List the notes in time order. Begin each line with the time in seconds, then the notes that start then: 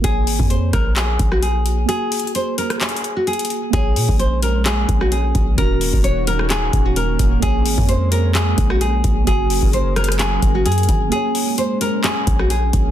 0.01 A#1 A#3 G#4, kick, closed hi-hat
0.07 C#5
0.27 G#1, open hi-hat
0.39 F2, kick
0.50 C5, closed hi-hat
0.73 A#1 A#4, kick, cross-stick, closed hi-hat
0.96 G#4, clap, closed hi-hat
1.19 A#1, kick, closed hi-hat
1.32 F#4, cross-stick
1.42 G#4, closed hi-hat
1.66 closed hi-hat
1.86 A#3 F#4 G#4, closed hi-hat
1.92 G#4
2.12 closed hi-hat, open hi-hat
2.19 closed hi-hat
2.27 closed hi-hat
2.35 C5, closed hi-hat
2.58 A#4, closed hi-hat
2.70 cross-stick, closed hi-hat
2.81 G#4, clap, closed hi-hat
2.89 closed hi-hat
2.96 closed hi-hat
3.04 closed hi-hat
3.17 F#4
3.27 G#4, closed hi-hat
3.33 closed hi-hat
3.39 closed hi-hat
3.45 closed hi-hat
3.50 closed hi-hat
3.70 A#1 G#3 A#3 C#4 G#4, kick, closed hi-hat
3.76 C#5
3.96 A#2, open hi-hat
4.09 A#1, kick
4.19 C5, closed hi-hat
4.42 A#4, closed hi-hat
4.66 G#4, clap, closed hi-hat
4.89 A#1, kick, closed hi-hat
5.01 F#4, cross-stick
5.11 G#4, closed hi-hat
5.35 A#1, kick, closed hi-hat
5.55 D#1 D#3 C#4 F#4 A#4, kick, closed hi-hat
5.61 F#4
5.81 open hi-hat
5.93 D#1, kick
6.04 C#5, closed hi-hat
6.27 A#4, closed hi-hat
6.39 cross-stick
6.50 G#4, clap, closed hi-hat
6.73 D#1, kick, closed hi-hat
6.86 F#4
6.96 A#4, closed hi-hat
7.19 D#1, kick, closed hi-hat
7.40 A#1 G#3 A#3 G#4, kick, closed hi-hat
7.46 C#5
7.66 G#1, open hi-hat
7.78 F2, kick
7.89 C5, closed hi-hat
8.12 A#4, closed hi-hat
8.35 G#4, clap, closed hi-hat
8.58 A#1, kick, closed hi-hat
8.70 F#4, cross-stick
8.81 G#4, closed hi-hat
9.04 A#1, kick, closed hi-hat
9.24 F#1 F#3 A#3 C#4 F#4 G#4 A#4, kick, closed hi-hat
9.30 G#4
9.50 open hi-hat
9.63 F#1, kick
9.73 C5, closed hi-hat
9.96 A#4, cross-stick, closed hi-hat
10.04 closed hi-hat
10.09 cross-stick, closed hi-hat
10.19 G#4, clap, closed hi-hat
10.42 F#1, kick, closed hi-hat
10.55 F#4
10.66 F#2 G#4, closed hi-hat
10.72 closed hi-hat
10.78 closed hi-hat
10.83 closed hi-hat
10.89 G#1, kick, closed hi-hat
11.09 G#3 A#3 G#4, closed hi-hat
11.15 C#5
11.35 open hi-hat
11.58 C5, closed hi-hat
11.81 A#4, closed hi-hat
12.04 G#4, clap, closed hi-hat
12.27 A#1, kick, closed hi-hat
12.39 F#4, cross-stick
12.50 G#4, closed hi-hat
12.73 A#1, kick, closed hi-hat